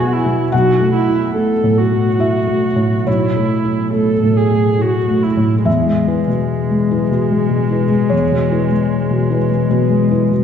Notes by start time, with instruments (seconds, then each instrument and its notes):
Already playing: felt piano B1 B2 E4 E5 F#5 G#5, viola F#4
0.00 felt piano B3
0.12 viola E4
0.26 felt piano B2
0.52 felt piano B1 F#5, viola F#4
0.80 felt piano A3
0.94 viola E4
1.09 felt piano E4
1.35 felt piano A3, viola A4
1.63 felt piano A2
1.78 viola F#4
1.92 felt piano A3
2.19 felt piano E4 E5
2.47 felt piano A3
2.76 felt piano A2
3.05 felt piano B1 C#5, viola E4
3.37 felt piano A3
3.65 felt piano E4
3.93 felt piano A3, viola A4
4.23 felt piano A2
4.37 viola G#4
4.51 felt piano A3
4.79 felt piano E4, viola F#4
5.08 felt piano A3
5.23 viola E4
5.37 felt piano A2
5.65 felt piano E2 E5, viola G#3
5.86 felt piano G#3
6.08 felt piano E4 B4
6.28 felt piano B2
6.71 felt piano G#3
6.91 felt piano E4 B4
7.11 felt piano B2
7.31 felt piano G#3
7.50 felt piano B2
7.71 felt piano E4 B4
7.90 felt piano G#3
8.09 felt piano E2 C#5
8.32 felt piano B2
8.52 felt piano E4 B4
8.71 felt piano G#3
9.10 felt piano B2
9.30 felt piano E4 B4
9.50 felt piano G#3
9.70 felt piano B2 B4
9.90 felt piano G#3
10.11 felt piano E4 B4
10.31 felt piano B2